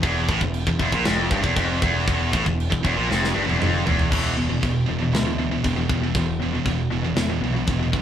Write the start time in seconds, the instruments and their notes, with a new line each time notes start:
0.02 picked electric bass E1, distorted electric guitar E2, kick, china
0.28 picked electric bass A1, distorted electric guitar A2, kick
0.41 picked electric bass E1, distorted electric guitar E2, kick
0.54 china
0.67 picked electric bass E1, distorted electric guitar E2, kick
0.79 picked electric bass E1, distorted electric guitar E2, kick
0.92 picked electric bass A#1, distorted electric guitar A#2, kick
1.05 picked electric bass F1, distorted electric guitar F2, snare, china
1.31 picked electric bass G1, distorted electric guitar G2, kick
1.44 picked electric bass E1, distorted electric guitar E2, kick
1.56 picked electric bass F1, distorted electric guitar F2, kick, china
1.82 picked electric bass E1, distorted electric guitar E2, kick
2.07 picked electric bass E1, distorted electric guitar E2, kick, china
2.33 picked electric bass A1, distorted electric guitar A2, kick
2.46 picked electric bass E1, distorted electric guitar E2, kick
2.60 china
2.71 picked electric bass E1, distorted electric guitar E2, kick
2.84 picked electric bass E1, distorted electric guitar E2, kick
2.97 picked electric bass A#1, distorted electric guitar A#2
3.09 picked electric bass F1, distorted electric guitar F2, snare
3.24 snare
3.35 picked electric bass G1, distorted electric guitar G2
3.48 picked electric bass E1, distorted electric guitar E2, mid tom
3.60 picked electric bass F1, distorted electric guitar F2, mid tom
3.86 picked electric bass E1, distorted electric guitar E2, floor tom
3.99 floor tom
4.11 picked electric bass E1, distorted electric guitar E2 B2 E3, kick, crash, china
4.37 picked electric bass E1, distorted electric guitar E2 B2
4.50 distorted electric guitar E2 B2
4.63 picked electric bass E1, distorted electric guitar E2 B2, kick, china
4.88 picked electric bass E1, distorted electric guitar E2 B2
5.02 distorted electric guitar E2 B2
5.13 picked electric bass D2, distorted electric guitar E2 B2, snare, china
5.27 distorted electric guitar E2 B2
5.39 distorted electric guitar E2 B2
5.51 distorted electric guitar E2 B2
5.64 picked electric bass E1, distorted electric guitar E2 B2, kick, china
5.76 distorted electric guitar E2 B2
5.89 picked electric bass E1, distorted electric guitar E2 B2, kick
6.02 distorted electric guitar E2 B2
6.15 picked electric bass E1, distorted electric guitar E2 B2, kick, china
6.40 distorted electric guitar E2 B2
6.53 distorted electric guitar E2 B2
6.65 picked electric bass E1, distorted electric guitar E2 B2, kick, china
6.91 picked electric bass E1, distorted electric guitar E2 B2
7.03 distorted electric guitar E2 B2
7.16 picked electric bass E1, distorted electric guitar E2 B2, snare, china
7.29 distorted electric guitar E2 B2
7.41 picked electric bass B1, distorted electric guitar E2 B2
7.53 distorted electric guitar E2 B2
7.66 picked electric bass E1, distorted electric guitar E2 B2, kick, china
7.79 distorted electric guitar E2 B2
7.92 picked electric bass B1, distorted electric guitar E2 B2, kick